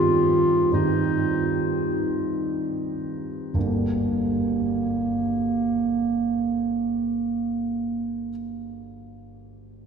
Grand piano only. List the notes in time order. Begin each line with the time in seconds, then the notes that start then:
Already playing: G2 D#3 C4 D#4
0.72 G2 D#3 C4 D#4
3.54 G1 D2 G3 A#3 D4 G4